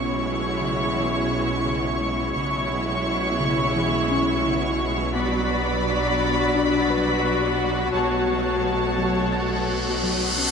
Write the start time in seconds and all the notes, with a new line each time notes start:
Already playing: B1 B2 G#3 C#4 E4 C#5 C#6
0.61 C#3
0.96 E3
1.31 C#4
1.66 C#3
2.01 G#3
2.34 B1 B2 C#3 G#3 C#4 E4 C#5 C#6
2.71 C#4
3.40 C#3
3.76 E3
4.11 C#4
4.46 C#3
4.80 G#3
5.14 F#3 B3 D4 F#4 D5 B5
5.50 B4
6.20 B3
6.55 D4
6.90 B4
7.25 B3
7.60 F#4
7.94 B1 B2 F#3 A3 C#5 A5, cymbal swell
8.29 F#4
8.98 F#3
9.33 A3
9.68 F#4
10.03 F#3
10.38 C#4